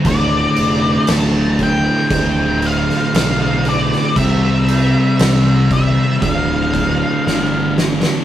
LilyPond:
<<
  \new Staff \with { instrumentName = "Lead electric guitar" } { \time 4/4 \key d \dorian \tempo 4 = 58 d''4 a''8 g''4 f''4 d''8 | e''4. e''8 f''4. r8 | }
  \new Staff \with { instrumentName = "Distorted electric guitar" } { \clef bass \time 4/4 \key d \dorian <d, a, d>1 | <c g c'>2 <d, a, d>2 | }
  \new Staff \with { instrumentName = "Fingered electric bass" } { \clef bass \time 4/4 \key d \dorian d,,8 f,,8 d,,4 d,,4 b,,4 | c,4 c,4 d,,4 g,,4 | }
  \new DrumStaff \with { instrumentName = "Drums" } \drummode { \time 4/4 <cymc bd>8 cymc8 <cymc sn>8 <cymc bd>8 <cymc bd>8 cymc16 sn16 <cymc sn>8 cymc16 sn16 | <cymc bd>8 cymc8 <cymc sn>8 <cymc bd>8 <cymc bd>8 <cymc bd>8 sn8 sn16 sn16 | }
>>